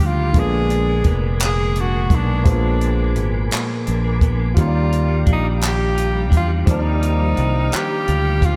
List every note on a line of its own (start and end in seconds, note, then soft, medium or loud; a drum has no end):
0.00 0.31 D2 medium
0.00 0.42 D#3 medium
0.00 0.30 F3 medium
0.00 0.18 G3 medium
0.00 0.32 G3 medium
0.00 0.33 A#3 medium
0.00 0.57 D4 medium
0.00 0.34 F4 medium
0.00 0.71 F4 medium
0.00 0.31 G4 medium
0.00 0.31 F5 medium
0.00 0.31 A#5 medium
0.00 0.30 D6 medium
0.06 0.41 F4 loud
0.20 0.43 G3 medium
0.32 1.01 A#1 loud
0.32 2.40 D3 medium
0.32 2.41 G#3 medium
0.32 4.52 A#4 medium
0.32 4.52 G#5 medium
0.32 4.52 B5 medium
0.32 8.56 D6 medium
0.32 kick loud
0.32 closed hi-hat medium
0.37 1.40 A#2 medium
0.37 2.43 B3 medium
0.37 2.44 D4 medium
0.37 1.16 G#4 loud
0.54 0.87 G#3 medium
0.70 1.77 D4 medium
0.70 closed hi-hat soft
0.88 1.23 G#3 medium
1.04 2.07 F1 medium
1.04 2.11 B3 medium
1.04 kick medium
1.04 closed hi-hat soft
1.24 1.58 G#3 medium
1.40 2.45 A#2 medium
1.40 clap loud
1.40 closed hi-hat medium
1.45 1.82 G#4 loud
1.60 1.94 G#3 medium
1.76 2.80 D4 medium
1.76 closed hi-hat soft
1.80 2.16 F#4 medium
1.95 2.28 G#3 medium
2.10 2.42 B1 loud
2.10 3.15 B3 medium
2.10 kick medium
2.10 closed hi-hat medium
2.15 2.48 D4 medium
2.30 2.62 G#3 medium
2.44 3.17 A#1 loud
2.44 3.50 A#2 medium
2.44 4.52 F3 medium
2.44 4.53 G#3 medium
2.44 kick loud
2.44 closed hi-hat medium
2.48 4.54 B3 medium
2.48 3.23 D4 medium
2.48 4.53 F4 medium
2.64 2.97 G#3 medium
2.81 3.86 D4 medium
2.81 closed hi-hat soft
2.98 3.32 G#3 medium
3.16 3.48 G#1 medium
3.16 4.20 B3 medium
3.16 closed hi-hat soft
3.34 3.68 G#3 medium
3.51 4.63 A#2 medium
3.51 muted fingered electric bass stroke soft
3.51 clap loud
3.51 closed hi-hat medium
3.70 4.03 G#3 medium
3.87 4.53 A#1 medium
3.87 4.90 D4 medium
3.87 closed hi-hat medium
4.04 4.38 G#3 medium
4.21 4.64 B3 medium
4.21 kick medium
4.21 closed hi-hat medium
4.40 4.64 G#3 medium
4.54 5.23 D#2 loud
4.54 5.60 D#3 medium
4.54 6.63 G3 soft
4.54 6.62 F4 medium
4.54 8.56 G4 medium
4.54 8.56 F5 medium
4.54 6.65 A#5 medium
4.54 kick loud
4.54 closed hi-hat medium
4.59 6.64 A#3 medium
4.59 4.66 C#4 soft
4.59 5.25 F4 medium
4.68 6.69 D5 medium
4.75 5.07 G3 medium
4.91 5.95 F4 medium
4.91 closed hi-hat soft
5.08 5.42 G3 medium
5.26 6.33 A#1 medium
5.26 6.29 D4 medium
5.26 kick medium
5.26 closed hi-hat soft
5.33 5.47 D#4 medium
5.43 5.77 G3 medium
5.61 6.64 D#3 medium
5.61 clap loud
5.61 closed hi-hat medium
5.67 6.31 G4 medium
5.79 6.12 G3 medium
5.95 7.00 F4 medium
5.95 closed hi-hat soft
6.13 6.46 G3 medium
6.30 6.64 E2 medium
6.30 7.35 D4 medium
6.30 kick medium
6.30 closed hi-hat medium
6.37 6.51 F4 medium
6.48 6.82 G3 medium
6.65 7.34 D#2 loud
6.65 7.70 D#3 medium
6.65 8.56 F3 medium
6.65 8.56 G3 medium
6.65 8.56 F6 medium
6.65 kick loud
6.65 closed hi-hat medium
6.70 8.56 A#3 medium
6.70 6.76 C4 medium
6.70 7.77 D#4 medium
6.79 8.56 D5 medium
6.83 7.18 G3 medium
7.01 8.06 F4 medium
7.01 closed hi-hat medium
7.19 7.52 G3 medium
7.36 7.69 C2 loud
7.36 8.41 D4 medium
7.36 closed hi-hat soft
7.53 7.88 G3 medium
7.71 8.56 D#3 medium
7.71 clap loud
7.71 closed hi-hat medium
7.76 8.47 G4 loud
7.89 8.23 G3 medium
8.07 8.56 D2 medium
8.07 8.56 F4 medium
8.07 closed hi-hat medium
8.24 8.56 G3 medium
8.42 8.56 D4 medium
8.42 8.56 F4 loud
8.42 kick medium
8.42 closed hi-hat soft